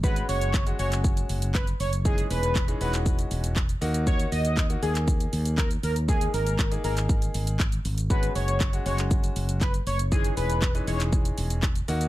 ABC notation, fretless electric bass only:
X:1
M:4/4
L:1/8
Q:1/4=119
K:C#dor
V:1 name="Fretless electric bass" clef=bass
G,,, F,,,2 F,,,2 F,,,2 F,,,- | F,,, E,,,2 E,,,2 E,,,2 D,,- | D,, D,,2 D,,2 D,,2 D,,- | D,, G,,,2 G,,,2 G,,,2 G,,,- |
G,,, F,,,2 F,,,2 F,,,2 F,,,- | F,,, E,,,2 E,,,2 E,,,2 D,, |]